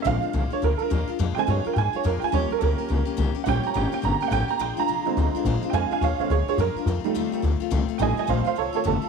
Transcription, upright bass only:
X:1
M:4/4
L:1/8
Q:"Swing" 1/4=212
K:Bbmix
V:1 name="Upright bass" clef=bass
B,,, z C,, z D,, z E,, z | F,, z G,, z A,, z F,, z | E,, z D,, z _D,, z C,, z | B,,, z A,,, z G,,, z =A,,, z |
B,,, z C,, z D,, z B,,, z | F,, z E,, z D,, z _G,, z | F,, z E,, z D,, z C,, z | =A,,, z B,,, z C,, z F,,, z |]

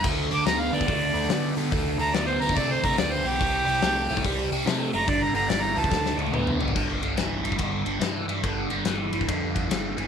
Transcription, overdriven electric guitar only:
X:1
M:4/4
L:1/8
Q:"Swing" 1/4=143
K:Gmix
V:1 name="Overdriven electric guitar" clef=bass
[D,A,] [D,A,] [D,B,] [D,B,] [D,A,] [D,A,] [D,B,] [D,B,] | [D,A,] [D,A,] [D,B,] [D,B,] [D,A,] [D,A,] [D,B,] [D,B,] | [C,G,] [C,G,] [C,A,] [C,A,] [C,G,] [C,G,] [C,A,] [C,A,] | [G,,D,] [G,,D,] [G,,E,] [G,,E,] [D,A,] [D,A,] [D,B,] [D,B,] |
[G,,D,] [G,,D,] [G,,E,] [G,,E,] [G,,D,] [G,,D,] [G,,E,] [G,,E,] | [G,,D,] [G,,D,] [G,,E,] [G,,E,] [G,,D,] [G,,D,] [G,,E,] [G,,E,] |]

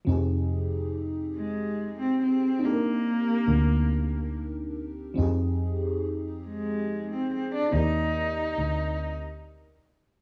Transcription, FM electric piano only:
X:1
M:6/8
L:1/8
Q:3/8=47
K:Fdor
V:1 name="FM electric piano"
[F,CEGA]6 | [CDEG=AB]6 | [F,CEGA]6 | [CEGBd]6 |]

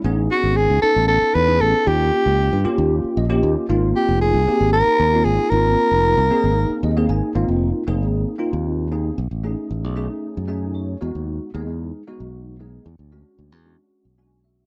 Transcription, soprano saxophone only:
X:1
M:7/8
L:1/8
Q:1/4=115
K:Ab
V:1 name="Soprano saxophone"
z _G ^G =A A =B A | G3 z4 | z G A2 B2 A | B4- B z2 |
z6 z | z6 z | z6 z | z6 z |]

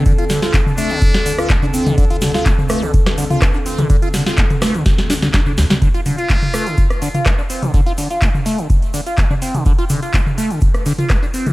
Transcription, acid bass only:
X:1
M:4/4
L:1/16
Q:1/4=125
K:Dm
V:1 name="Acid bass" clef=bass
D, F D, F G, z A, D, z2 D, F G, D C D, | D, F D, F G, z A, D, z2 D, F G, D C D, | D, F D, F G, z A, D, z2 D D, D D D,, G, | D, F D, F G, z A, D, z2 D, F G, D C D, |
D, F D, F G, z A, D, z2 D, F G, D C D, | D, F D, F G, z A, D, z2 D, F G, D C D, |]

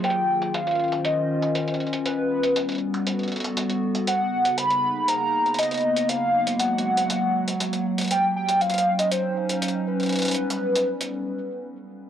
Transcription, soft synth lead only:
X:1
M:4/4
L:1/16
Q:1/4=119
K:C#mix
V:1 name="Soft synth lead"
=g4 e4 d6 z2 | B6 z8 z2 | f4 b4 a4 d4 | e4 f8- f2 z2 |
=g2 g2 e3 d =c4 z2 B2- | B12 z4 |]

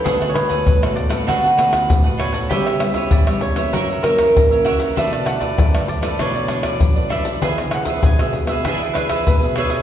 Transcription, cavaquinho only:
X:1
M:4/4
L:1/16
Q:1/4=98
K:Bdor
V:1 name="Cavaquinho"
[DABf] [ABf] z [ABf]2 [ABf] z [ABf] [DABf] [ABf] [DABf] [ABf]2 [ABf] [DABf] [ABf] | [=GBce] [Bce] z [Bce]2 [Bce] z [Bce] [F^Ace] [Ace] [FAce] [Ace]2 [Ace] [FAce] [Ace] | [DABd] [ABd] z [ABd]2 [ABd] z [ABd] [DABd] [ABd] [DABd] [ABd]2 [ABd] [DABd] [ABd] | [DGBe] [GBe] z [GBe]2 [GBe] z [GBe] [DGBe] [GBe] [DGBe] [GBe]2 [GBe] [DGBe] [GBe] |]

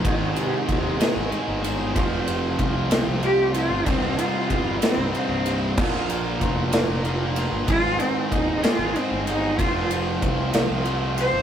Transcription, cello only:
X:1
M:6/8
L:1/8
Q:3/8=63
K:Ablyd
V:1 name="Cello"
E, C, C,2 z2 | z4 G F | C F2 C C2 | z6 |
F C E F C E | F z4 c |]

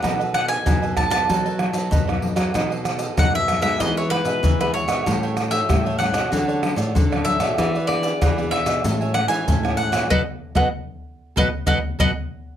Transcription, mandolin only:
X:1
M:4/4
L:1/16
Q:1/4=95
K:Bmix
V:1 name="Mandolin"
f2 f g3 a a6- a z2 | z4 f e2 e d c B3 B c2- | c3 e3 f4 z4 e2- | e2 =d4 e4 f g3 f2 |
[Bdf] z2 [Bdf] z4 [Bdf] z [Bdf] z [Bdf] z3 |]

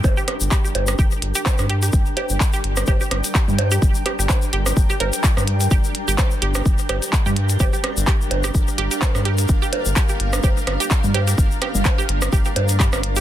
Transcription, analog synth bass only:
X:1
M:4/4
L:1/16
Q:"Swing 16ths" 1/4=127
K:Gm
V:1 name="Analog synth bass" clef=bass
G,,, z2 G,,, z2 G,,,2 G,,, z G,,, z2 G,,3 | G,,, z2 G,,, z2 G,,,2 G,,, z G,,, z2 G,,3 | G,,, z2 G,,, z2 G,,,2 G,,, z G,,, z2 G,,3 | G,,, z2 G,,, z2 G,,,2 G,,, z G,,, z2 G,,3 |
G,,, z2 G,,, z2 G,,,2 G,,, z G,,, z2 G,,3 | G,,, z2 G,,, z2 G,,,2 G,,, z G,,, z2 G,,3 | G,,, z2 G,,, z2 G,,,2 G,,, z G,,3 G,,,3 |]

